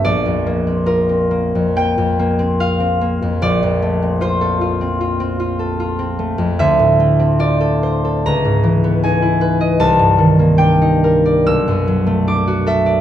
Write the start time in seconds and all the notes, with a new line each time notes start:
Already playing: D4
0.05 A#1 D5
0.26 F2
0.46 A#3
0.67 C4
0.86 F4 A#4
1.09 C4
1.31 A#3
1.55 F2
1.76 A#3 G5
1.98 F2
2.19 A#3
2.39 C4
2.60 F4 F5
2.80 C4
3.01 A#3
3.22 F2
3.42 A#1 D5
3.63 F2
3.82 A3
4.02 C4
4.21 F4 C5
4.41 A4
4.61 F4
4.81 C4
5.01 F4
5.20 C4
5.40 F4
5.59 A4
5.80 F4
5.99 C4
6.19 A3
6.38 F2
6.59 D2 E5
6.79 A2
7.00 A3
7.19 C4
7.39 F4 D5
7.61 A4
7.83 C5
8.05 A4
8.26 C#2 A#5
8.45 G#2
8.64 E3
8.84 B3
9.04 D#4 G#5
9.22 E4
9.41 B4
9.61 D#5
9.80 C2 A5
9.99 G2
10.18 D#3
10.39 A#3
10.58 D4 G5
10.82 D#4
11.04 A#4
11.25 D5
11.46 B1 E6
11.68 F#2
11.88 F#3
12.07 A3
12.27 D4 D6
12.47 F#4
12.66 A4 E5
12.86 D5